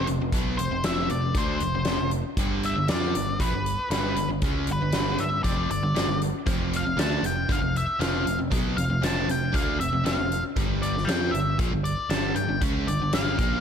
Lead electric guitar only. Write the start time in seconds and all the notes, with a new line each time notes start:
0.58 C5
0.85 E5
1.11 D5
1.37 C5
2.65 E5
2.89 D5
3.40 B4
3.91 B4
4.72 B4
5.20 E5
5.43 D5
5.71 D5
6.76 F5
6.99 A5
7.26 G5
7.52 F5
7.77 E5
8.01 F5
8.77 F5
9.04 A5
9.31 G5
9.55 F5
9.80 E5
10.06 F5
10.82 D5
11.05 G5
11.31 E5
11.84 D5
12.10 A5
12.36 G5
12.88 D5
13.14 F5